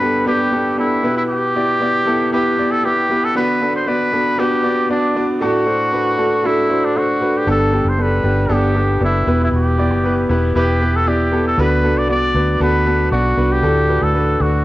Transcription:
Already playing: grand piano G2 D3 A4 B4, trumpet B4
0.00 grand piano B3 D4 G4 A4
0.26 grand piano B3 D4 G4 B4, trumpet G4
0.52 grand piano B3 D4 G4 A4
0.77 grand piano B3 D4 G4 A4, trumpet E4
1.03 grand piano B2 B3 E4 G4 B4
1.17 trumpet E4
1.29 trumpet G4
1.55 grand piano B3 E4 G4 D5
1.80 grand piano B3 E4 G4 D5
2.06 grand piano B3 E4 G4 A4
2.33 grand piano B3 E4 G4 B4, trumpet G4
2.58 grand piano B3 E4 G4 D5
2.71 trumpet A4
2.84 grand piano B3 E4 G4 B4, trumpet G4
3.09 grand piano B3 E4 G4 B4
3.24 trumpet A4
3.35 grand piano D3 B3 D4 F#4 B4, trumpet B4
3.61 grand piano B3 D4 F#4 A4
3.75 trumpet C5
3.86 grand piano B3 D4 F#4 D5, trumpet B4
4.12 grand piano B3 D4 F#4 A4
4.38 grand piano B3 D4 F#4 B4, trumpet G4
4.63 grand piano B3 D4 F#4 D5
4.89 grand piano B3 D4 F#4 D5, trumpet D4
5.15 grand piano B3 D4 F#4 D5
5.41 grand piano A2 A3 D4 F#4 A4, trumpet F#4
5.66 grand piano A3 D4 F#4 C5
5.92 grand piano A3 D4 F#4 B4
6.18 grand piano A3 D4 F#4 A4
6.44 grand piano A3 D4 F#4 A4, trumpet E4
6.70 grand piano A3 D4 F#4 C5
6.85 trumpet D4
6.95 grand piano A3 D4 F#4 C5, trumpet F#4
7.21 grand piano A3 D4 F#4 B4
7.38 trumpet G4
7.47 fingered electric bass G1, grand piano D3 G3 B3 D4 G4 A4, trumpet A4
7.72 grand piano B3 D4 G4 A4
7.85 fingered electric bass F#1
7.89 trumpet C5
7.98 grand piano B3 D4 G4 A4, trumpet B4
8.23 fingered electric bass G1, grand piano B3 D4 G4 B4
8.49 fingered electric bass G1, grand piano B3 D4 G4 A4, trumpet G4
8.75 grand piano B3 D4 G4 A4
9.00 fingered electric bass F#1, grand piano B3 D4 G4 A4, trumpet E4
9.27 fingered electric bass E1, grand piano B2 B3 E4 G4 B4
9.43 trumpet E4
9.52 fingered electric bass E1
9.56 trumpet G4
9.78 grand piano B3 E4 G4 D5
9.90 fingered electric bass F#1
10.04 grand piano B3 E4 G4 B4
10.29 fingered electric bass E1, grand piano B3 E4 G4 B4
10.55 fingered electric bass E1, grand piano B3 E4 G4 B4, trumpet G4
10.80 grand piano B3 E4 G4 B4
10.96 trumpet A4
11.06 grand piano B3 E4 G4 D5, trumpet G4
11.31 grand piano B3 E4 G4 A4
11.47 trumpet A4
11.57 fingered electric bass D2, grand piano D3 B3 D4 F#4 B4, trumpet B4
11.84 grand piano B3 D4 F#4 A4
11.97 fingered electric bass C2, trumpet D5
12.08 grand piano B3 D4 F#4 D5, trumpet D5
12.35 fingered electric bass D2, grand piano B3 D4 F#4 B4
12.60 fingered electric bass D2, grand piano B3 D4 F#4 A4, trumpet B4
12.86 grand piano B3 D4 F#4 A4
13.12 fingered electric bass B1, grand piano B3 D4 F#4 D5, trumpet F#4
13.37 fingered electric bass C2, grand piano B3 D4 F#4 B4
13.52 trumpet G4
13.63 fingered electric bass D2, grand piano A2 A3 D4 F#4 A4
13.88 grand piano A3 D4 F#4 B4
14.02 fingered electric bass D2, trumpet A4
14.14 grand piano A3 D4 F#4 B4
14.40 fingered electric bass D2, grand piano A3 D4 F#4 A4, trumpet F#4

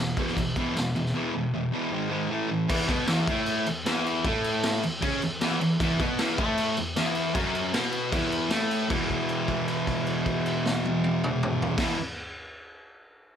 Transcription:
Already playing: distorted electric guitar E2
0.00 distorted electric guitar B2
0.17 distorted electric guitar E2 B2 E3, kick, crash
0.28 snare
0.37 distorted electric guitar E2 B2, kick, crash
0.56 distorted electric guitar E2 B2 E3, kick, crash
0.77 distorted electric guitar E2 B2, snare, crash
0.95 distorted electric guitar E2 B2, crash
1.06 snare
1.14 distorted electric guitar E2 B2 E3
1.34 distorted electric guitar E2 B2
1.54 distorted electric guitar E2 B2
1.72 distorted electric guitar E2 B2 E3
1.91 distorted electric guitar G#2 D#3 G#3
2.09 distorted electric guitar G#2 D#3 G#3
2.29 distorted electric guitar A2 E3 A3
2.50 distorted electric guitar A2 E3
2.68 distorted electric guitar E2 E3, kick, crash
2.88 distorted electric guitar B2 B3, kick, crash
3.06 distorted electric guitar E2 E3, snare, crash
3.27 distorted electric guitar A2 A3, kick, crash
3.46 crash
3.66 distorted electric guitar E2, crash
3.85 distorted electric guitar E2 E3, snare, crash
4.06 crash
4.24 distorted electric guitar A2 A3, kick, crash
4.44 crash
4.63 snare, crash
4.83 distorted electric guitar E2, crash
5.01 distorted electric guitar C#3 C#4, kick, crash
5.22 distorted electric guitar E2, crash
5.41 distorted electric guitar E2 E3, snare, crash
5.61 distorted electric guitar E2, crash
5.80 distorted electric guitar E2 E3, kick, crash
5.99 distorted electric guitar B2 B3, kick, crash
6.17 distorted electric guitar E2 E3, snare, crash
6.37 distorted electric guitar A2 A3, kick, crash
6.58 crash
6.77 distorted electric guitar E2, crash
6.96 distorted electric guitar E2 E3, snare, crash
7.15 crash
7.34 distorted electric guitar F#2 F#3, kick, crash
7.55 crash
7.73 distorted electric guitar B2 B3, snare, crash
7.92 crash
8.11 distorted electric guitar E2 E3, kick, crash
8.32 crash
8.49 distorted electric guitar A2 A3, snare, crash
8.71 crash
8.88 distorted electric guitar E2 B2, kick, crash
8.92 distorted electric guitar E3
9.10 kick, crash
9.29 crash
9.48 kick, crash
9.68 crash
9.87 kick, crash
10.06 crash
10.26 kick, crash
10.46 crash
10.66 snare
10.85 high tom
11.04 high tom
11.24 mid tom
11.43 mid tom
11.62 floor tom
11.77 distorted electric guitar E2 B2, kick, snare, crash
11.82 distorted electric guitar E3

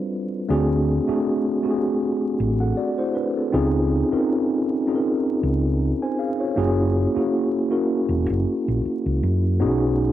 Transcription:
Already playing: tine electric piano G3 C4 D4 F4 B4 C5
0.48 fingered electric bass D2, tine electric piano A3 C4 D4 F#4 G#4
1.07 tine electric piano A3 C4 D4 F#4 G#4, muted fingered electric bass stroke
1.62 tine electric piano A3 C4 D4 F#4 G4
1.71 tine electric piano G#4
2.40 fingered electric bass A1
2.60 tine electric piano A4 F#5
2.77 tine electric piano F#4 D5
2.98 tine electric piano E4 C5
3.15 tine electric piano D4 B4
3.36 tine electric piano C4 A4
3.52 fingered electric bass C#2, tine electric piano C4 C#4 D#4 F4 G#4
4.11 tine electric piano C4 C#4 D#4 F4 A#4, muted fingered electric bass stroke
4.87 tine electric piano C4 C#4 D#4 F4 G#4
4.95 tine electric piano A#4
5.43 fingered electric bass C#2
6.02 tine electric piano C5 G#5
6.19 tine electric piano G#4 F5
6.40 tine electric piano F4 C#5
6.56 fingered electric bass F#1, tine electric piano A#3 C#4 E4 F#4 G#4
7.15 tine electric piano A#3 C#4 E4 F#4 G#4, muted fingered electric bass stroke
7.70 tine electric piano A#3 C#4 E4 F#4 A#4
8.09 fingered electric bass E1
8.30 fingered electric bass F#1
8.68 fingered electric bass A#1
8.85 muted fingered electric bass stroke
9.06 fingered electric bass C#2
9.23 fingered electric bass F#2
9.60 fingered electric bass B1, tine electric piano B3 C#4 D#4 F#4 G#4

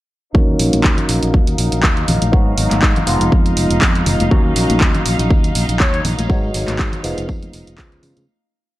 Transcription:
0.34 fingered electric bass D#2, tine electric piano F#3 A#3 C#4 D#4 F#4, violin section D#4 F5, kick
0.59 fingered electric bass A#1, open hi-hat
0.73 fingered electric bass A#1, closed hi-hat, tambourine, high conga
0.84 fingered electric bass D#2, kick, clap, tambourine
0.98 closed hi-hat, tambourine, low conga
1.09 fingered electric bass A#1, open hi-hat
1.23 fingered electric bass A#1, closed hi-hat
1.34 fingered electric bass D#2, kick
1.47 closed hi-hat
1.58 fingered electric bass A#1, open hi-hat
1.72 fingered electric bass A#1, closed hi-hat
1.83 fingered electric bass D#2, kick, clap
1.97 closed hi-hat
2.08 fingered electric bass A#1, open hi-hat, tambourine, low conga
2.22 fingered electric bass A#1, closed hi-hat, tambourine, high conga
2.32 fingered electric bass G#2, tine electric piano F#3 G#3 B3 D#4 F#4, kick
2.48 tambourine
2.58 fingered electric bass G#1, open hi-hat
2.71 fingered electric bass G#1, clap, closed hi-hat, tambourine, high conga
2.82 fingered electric bass G#2, kick, clap
2.96 closed hi-hat, tambourine, low conga
3.06 fingered electric bass F1, tine electric piano F3 G#3 B3 D#4 F4, open hi-hat
3.21 fingered electric bass F1, closed hi-hat
3.32 fingered electric bass F2, kick
3.46 closed hi-hat
3.57 fingered electric bass F1, open hi-hat, tambourine
3.70 fingered electric bass F1, closed hi-hat
3.82 fingered electric bass F2, kick, clap, open hi-hat
3.95 closed hi-hat, tambourine
4.06 fingered electric bass F1, open hi-hat, tambourine, low conga
4.20 fingered electric bass F1, closed hi-hat, tambourine, high conga
4.30 fingered electric bass D#2, tine electric piano F#3 A#3 C#4 D#4 F#4, kick, tambourine
4.45 tambourine
4.56 fingered electric bass A#1, open hi-hat, tambourine
4.70 fingered electric bass A#1, closed hi-hat, tambourine, high conga
4.81 kick, clap, tambourine
4.95 closed hi-hat, tambourine, low conga
5.06 fingered electric bass A#1, open hi-hat, tambourine
5.19 fingered electric bass A#1, closed hi-hat, tambourine
5.30 fingered electric bass D#2, kick, tambourine
5.44 closed hi-hat, tambourine
5.55 fingered electric bass A#1, open hi-hat, tambourine
5.69 fingered electric bass A#1, closed hi-hat, tambourine
5.80 fingered electric bass D#2, trumpet section C#5, kick, clap, tambourine
5.94 closed hi-hat, tambourine
6.05 fingered electric bass A#1, open hi-hat, tambourine, low conga
6.19 fingered electric bass A#1, closed hi-hat, tambourine, high conga
6.29 fingered electric bass G#2, tine electric piano F#3 G#3 B3 D#4 F#4, kick, tambourine
6.43 tambourine
6.54 fingered electric bass G#1, open hi-hat, tambourine
6.68 fingered electric bass G#1, clap, closed hi-hat, tambourine, high conga
6.79 fingered electric bass G#2, kick, clap, tambourine
6.93 closed hi-hat, tambourine, low conga
7.03 fingered electric bass F1, tine electric piano F3 G#3 B3 D#4 F4, open hi-hat, tambourine
7.17 fingered electric bass F1, closed hi-hat, tambourine
7.29 fingered electric bass F2, kick, tambourine
7.42 closed hi-hat, tambourine, high conga
7.53 fingered electric bass F1, open hi-hat, tambourine
7.67 fingered electric bass F1, closed hi-hat, tambourine
7.78 tine electric piano F3 G#3 B3 C#4 F4, kick, clap, open hi-hat, tambourine
7.92 closed hi-hat, tambourine
8.03 fingered electric bass C#3, open hi-hat, tambourine, low conga
8.17 fingered electric bass C#3, closed hi-hat, tambourine, high conga

